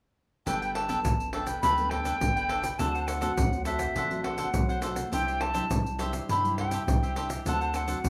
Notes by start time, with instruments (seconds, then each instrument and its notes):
0.46 sub bass G1, nylon-string guitar G3 B3 D4 A4, cavaquinho D4 A4 B4 G5, flute G5, pandeiro, shaker, surdo
0.62 cavaquinho A4 B4 G5, pandeiro, shaker
0.74 cavaquinho D4 A4 B4 G5, flute A5, pandeiro
0.89 nylon-string guitar B3 D4 A4, cavaquinho D4 A4 B4 G5, pandeiro, shaker, surdo
1.05 sub bass G1, nylon-string guitar D3, pandeiro, shaker, surdo
1.20 pandeiro, shaker
1.33 nylon-string guitar B3 D4 A4, cavaquinho D4 A4 B4 G5, pandeiro
1.47 cavaquinho A4 B4 G5, pandeiro, shaker, surdo
1.62 sub bass D2, nylon-string guitar G3, cavaquinho D4 A4 B4 G5, flute B5, pandeiro, shaker, surdo
1.78 nylon-string guitar B3 D4 A4, pandeiro, shaker
1.90 cavaquinho D4 A4 B4 G5, flute G5, pandeiro, surdo
2.05 cavaquinho D4 A4 B4 G5, pandeiro, shaker
2.20 sub bass G1, nylon-string guitar D3 B3 D4 A4, pandeiro, shaker, surdo
2.36 cavaquinho A4 B4 G5, pandeiro, shaker
2.49 cavaquinho D4 A4 B4 G5, pandeiro
2.62 cavaquinho A4 B4 G5, pandeiro, shaker, surdo
2.79 sub bass D2, nylon-string guitar D3 A3 C4 F#4, cavaquinho D4 A4 C5 F#5, flute A5, pandeiro, shaker, surdo
2.95 cavaquinho A4 C5 F#5, pandeiro, shaker
3.07 cavaquinho D4 A4 C5 F#5, flute F#5, pandeiro, shaker
3.21 nylon-string guitar A3 C4 F#4, cavaquinho D4 A4 C5 F#5, pandeiro, shaker, surdo
3.37 sub bass D2, nylon-string guitar A2, pandeiro, shaker, surdo
3.52 nylon-string guitar A3 C4 F#4, pandeiro, shaker
3.65 nylon-string guitar A3 C4 F#4, cavaquinho D4 A4 C5 F#5, flute E5, pandeiro, shaker
3.79 cavaquinho A4 C5 F#5, pandeiro, shaker, surdo
3.95 sub bass A1, nylon-string guitar D3, cavaquinho D4 A4 C5 F#5, pandeiro, shaker, surdo
4.10 nylon-string guitar A3 C4 F#4, pandeiro, shaker
4.24 cavaquinho D4 A4 C5 F#5, flute F#5, pandeiro, surdo
4.38 cavaquinho D4 A4 C5 F#5, pandeiro, shaker
4.54 sub bass B1, nylon-string guitar A2 A3 C4 F#4, pandeiro, shaker, surdo
4.69 cavaquinho A4 C5 F#5, pandeiro, shaker
4.82 nylon-string guitar A3 C4 F#4, cavaquinho D4 A4 C5 F#5, pandeiro, shaker
4.95 cavaquinho A4 C5 F#5, pandeiro, shaker, surdo
5.12 sub bass C2, nylon-string guitar C3 G3 D4 E4, cavaquinho D4 G4 C5 E5, flute G5, pandeiro, shaker, surdo
5.27 cavaquinho G4 C5 E5, pandeiro, shaker
5.40 cavaquinho D4 G4 C5 E5, flute A5, pandeiro
5.54 nylon-string guitar G3 D4 E4, cavaquinho D4 G4 C5 E5, pandeiro, shaker, surdo
5.70 sub bass C2, nylon-string guitar G3, pandeiro, shaker, surdo
5.86 pandeiro, shaker
5.98 nylon-string guitar G3 D4 E4, cavaquinho D4 G4 C5 E5, pandeiro, shaker
6.12 cavaquinho G4 C5 E5, pandeiro, shaker, surdo
6.29 sub bass G2, nylon-string guitar C3, cavaquinho D4 G4 C5 E5, flute B5, pandeiro, shaker, surdo
6.43 nylon-string guitar G3 D4 E4, pandeiro, shaker
6.58 cavaquinho D4 G4 C5 E5, flute G5, pandeiro, surdo
6.71 cavaquinho D4 G4 C5 E5, pandeiro, shaker
6.86 sub bass C2, nylon-string guitar G3 D4 E4, pandeiro, shaker, surdo
7.03 cavaquinho G4 C5 E5, pandeiro, shaker
7.16 cavaquinho D4 G4 C5 E5, pandeiro, shaker, surdo
7.29 cavaquinho G4 C5 E5, pandeiro, shaker, surdo
7.45 sub bass D2, nylon-string guitar D3 A3 C4 F#4, cavaquinho D4 A4 C5 F#5, flute A5, pandeiro, shaker, surdo
7.61 cavaquinho A4 C5 F#5, pandeiro, shaker
7.74 cavaquinho D4 A4 C5 F#5, flute F#5, pandeiro, shaker
7.87 nylon-string guitar A3 C4 F#4, cavaquinho D4 A4 C5 F#5, pandeiro, shaker, surdo
8.04 sub bass D2, nylon-string guitar A2, pandeiro, shaker, surdo